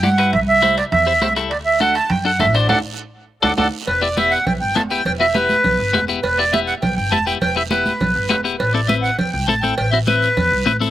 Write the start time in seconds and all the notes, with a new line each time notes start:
0.03 G2 E4 G4 D5 F#5, high conga, high timbale, short guiro
0.18 E4 G4 B4, high timbale, short guiro
0.33 C2 E5, high conga, low conga, high timbale, long guiro
0.48 E5
0.62 E4 G4 C5, high conga, high timbale, short guiro
0.77 D5, high timbale, short guiro
0.92 E2 E5, high conga, low conga, high timbale, long guiro
1.07 E4 G4 C5
1.22 C2 E4 G4 C5, high conga, high timbale, low timbale, short guiro
1.36 E4 G4 A4, high timbale, short guiro
1.50 D2 D5, high conga, high timbale, long guiro
1.66 E5
1.80 D4 F#4 A4 F#5, high conga, high timbale, short guiro
1.95 A5, high timbale, short guiro
2.10 F#2 G5, high conga, low conga, high timbale, long guiro
2.25 D4 F#4 A4 F#5
2.39 A1 D4 F#4 A4 E5, high conga, low conga, high timbale, low timbale, short guiro
2.54 D4 F#4 C5 D5, high timbale, short guiro
2.69 D2 D4 F#4 A4 D5 F#5, high conga, high timbale, long guiro
3.43 D2 D4 F#4 A4 D5 F#5, high conga, high timbale, long guiro
3.57 D2 D4 F#4 A4 D5 F#5, high conga, high timbale, long guiro
3.87 E1 B4, cowbell
4.02 B3 E4 G4 D5, high conga
4.17 B3 E4 G4 E5, high conga, short guiro
4.31 F#5, short guiro
4.46 B1 G5, cowbell, high conga, low conga, long guiro
4.61 G1 G5
4.75 E1 B3 E4 A4 A5, high conga, low timbale, short guiro
4.90 B3 E4 G4 G5, short guiro
5.05 E1 G5, cowbell, low conga, long guiro
5.20 B3 E4 F#4 E5, high conga
5.34 B3 E4 G4 B4, high conga, short guiro
5.49 high conga, short guiro
5.64 B1, cowbell, high conga, low conga, long guiro
5.79 G1
5.93 E1 B3 E4 G4, high conga, low timbale, short guiro
6.08 B3 E4 G4, short guiro
6.22 E1 B4, cowbell, long guiro
6.38 B3 E4 G4 D5, high conga
6.53 B3 E4 G4 E5, high conga, short guiro
6.67 F#5, short guiro
6.82 B1 G5, cowbell, high conga, low conga, long guiro
6.96 G1 G5
7.11 E1 B3 E4 G4 A5, high conga, short guiro
7.26 B3 E4 G4 G5, short guiro
7.41 E1 G5, cowbell, low conga, long guiro
7.56 B3 E4 G4 E5, high conga
7.71 B3 E4 G4 B4, high conga, short guiro
7.86 high conga, short guiro
8.00 B1, cowbell, high conga, low conga, long guiro
8.16 G1
8.29 E1 B3 E4 G4, high conga, low timbale, short guiro
8.44 B3 E4 G4, short guiro
8.58 A1 B4, cowbell, long guiro
8.73 C4 E4 A4 D5, high conga
8.88 C4 E4 B4 E5, high conga, short guiro
9.02 F#5, short guiro
9.18 E2 G5, cowbell, high conga, low conga, long guiro
9.32 C2 G5
9.47 A1 C4 E4 A4 A5, high conga, short guiro
9.62 C4 E4 A4 G5, high conga, short guiro
9.77 A1 G5, cowbell, long guiro
9.91 C4 E4 F#4 E5, high conga
10.07 C4 E4 B4, high conga, short guiro
10.22 short guiro
10.37 E2, cowbell, high conga, low conga, long guiro
10.52 C2
10.66 A1 C4 E4 B4, high conga, short guiro
10.80 C4 E4 A4, high conga, short guiro